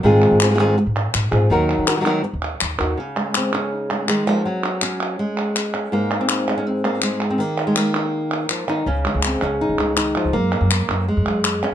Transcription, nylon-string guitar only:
0.03 0.39 D#3 loud
0.03 0.40 G#3 medium
0.03 0.40 C4 medium
0.03 0.40 F4 medium
0.03 0.39 G#4 medium
0.40 0.49 C4 medium
0.40 0.49 F4 medium
0.40 0.50 G#4 medium
0.50 0.53 G#3 soft
0.50 0.54 C4 medium
0.50 0.54 F4 medium
0.50 0.54 G#4 medium
0.54 0.58 G#3 medium
0.54 0.58 C4 medium
0.54 0.59 F4 medium
0.54 0.59 G#4 medium
0.59 0.76 D#3 medium
0.59 0.77 G#3 medium
0.59 0.77 C4 medium
0.59 0.77 F4 medium
0.59 0.77 G#4 medium
0.77 muted nylon-string guitar stroke medium
1.31 1.51 C4 soft
1.31 1.50 F4 soft
1.31 1.50 G#4 medium
1.50 1.86 D#3 medium
1.50 1.87 F#3 medium
1.50 1.87 D#4 medium
1.50 1.87 F#4 medium
1.50 1.86 A#4 loud
1.88 1.96 D#4 medium
1.88 1.96 F#4 medium
1.88 1.96 A#4 medium
1.96 2.00 F#3 soft
1.96 2.00 D#4 medium
1.96 2.00 F#4 medium
1.96 2.01 A#4 medium
2.01 2.05 F#3 medium
2.01 2.05 D#4 medium
2.01 2.05 F#4 medium
2.01 2.05 A#4 medium
2.05 2.22 D#3 medium
2.05 2.23 F#3 medium
2.05 2.23 D#4 medium
2.05 2.23 F#4 medium
2.05 2.23 A#4 medium
2.23 muted nylon-string guitar stroke medium
2.79 3.00 D#4 soft
2.79 2.98 F#4 soft
2.79 2.97 A#4 medium
2.97 4.08 C#3 medium
2.97 3.36 C#4 loud
3.16 3.90 G#3 medium
3.36 3.54 C4 loud
3.54 4.09 C#4 loud
3.72 4.46 D#4 medium
3.90 4.08 G#3 soft
4.08 4.27 D#3 medium
4.08 4.27 G#3 medium
4.27 4.45 F3 medium
4.27 4.45 A#3 medium
4.45 5.19 F#3 medium
4.45 4.82 C4 loud
4.82 5.56 C#4 medium
5.19 5.93 G#3 medium
5.74 5.90 C#4 medium
5.92 7.39 G#2 medium
5.92 6.47 A#3 loud
6.21 6.57 C4 medium
6.29 6.93 D#4 loud
6.48 6.84 G#3 soft
6.58 6.67 C#4 loud
6.67 7.21 C4 loud
6.85 7.02 A#3 medium
7.03 7.40 G#3 medium
7.30 7.40 C4 medium
7.38 8.49 D#3 medium
7.38 7.66 A#3 loud
7.67 7.77 G#3 medium
7.77 8.87 A#3 medium
8.50 8.67 F3 soft
8.67 8.86 D#3 medium
8.67 8.87 D#4 loud
8.86 9.96 C#3 medium
8.86 9.24 C#4 loud
9.05 9.79 G#3 medium
9.25 9.43 C4 medium
9.43 9.98 C#4 medium
9.61 9.96 D#4 medium
9.79 10.33 G#3 soft
9.97 10.15 D#3 medium
9.97 10.34 D#4 loud
10.16 10.34 F3 medium
10.33 10.70 A#3 loud
10.52 11.62 C#4 medium
10.71 11.08 A#3 medium
11.08 11.74 G#3 medium
11.63 11.74 C#4 loud

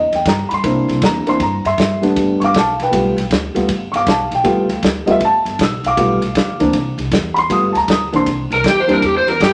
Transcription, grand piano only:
0.00 0.13 D#5 medium
0.15 0.27 G5 medium
0.28 0.51 A#5 medium
0.49 0.51 B5 medium
0.54 1.02 C6 medium
0.64 1.22 A#3 medium
0.64 1.22 C4 medium
0.64 1.22 D4 medium
0.64 1.23 E4 medium
1.05 1.27 A#5 medium
1.27 1.39 A#3 medium
1.27 1.39 C4 medium
1.27 1.39 D4 medium
1.27 1.39 E4 medium
1.27 1.41 C6 medium
1.42 1.65 A#5 medium
1.66 2.01 E5 medium
1.66 2.03 C6 medium
2.01 2.51 G3 medium
2.01 2.51 A3 medium
2.01 2.52 B3 medium
2.01 2.52 D4 medium
2.40 2.42 C#6 medium
2.44 2.55 F5 medium
2.44 2.56 D6 loud
2.57 2.79 F5 medium
2.57 2.80 A5 medium
2.82 3.16 B4 medium
2.82 3.18 G5 medium
2.91 3.14 G3 medium
2.91 3.14 A3 medium
2.91 3.15 B3 medium
2.91 3.15 F4 medium
3.54 3.67 G3 medium
3.54 3.67 A3 medium
3.54 3.67 B3 medium
3.54 3.68 F4 medium
3.92 4.07 F5 medium
3.92 3.93 C#6 medium
3.96 4.08 D6 loud
4.09 4.31 F5 medium
4.09 4.32 A5 medium
4.35 4.70 G5 loud
4.44 4.67 G3 medium
4.44 4.67 A3 medium
4.44 4.67 B3 medium
4.44 4.67 F4 medium
5.06 5.19 G3 medium
5.06 5.19 A3 medium
5.06 5.19 B3 medium
5.06 5.20 F4 medium
5.06 5.08 D#5 medium
5.11 5.22 E5 medium
5.25 5.60 A5 loud
5.62 5.85 E6 medium
5.86 6.71 F5 medium
5.86 6.97 D6 loud
5.97 6.19 G3 medium
5.97 6.19 A3 medium
5.97 6.20 B3 medium
5.97 6.20 F4 medium
6.59 6.72 E3 medium
6.59 6.72 A#3 medium
6.59 6.72 C4 medium
6.59 6.72 D4 medium
7.34 7.36 B5 medium
7.38 7.50 C6 loud
7.49 7.72 G3 medium
7.49 7.72 A3 medium
7.49 7.72 B3 medium
7.49 7.72 F4 medium
7.49 7.75 D#6 medium
7.72 7.74 A5 medium
7.77 7.89 A#5 loud
7.91 8.13 D#6 medium
8.12 8.25 E3 medium
8.12 8.25 A#3 medium
8.12 8.25 C4 medium
8.12 8.25 D4 medium
8.12 8.27 C6 medium
8.87 9.00 G3 medium
8.87 9.00 A#3 medium
8.87 9.01 C4 medium
8.87 9.00 D4 medium
8.87 9.01 E4 medium

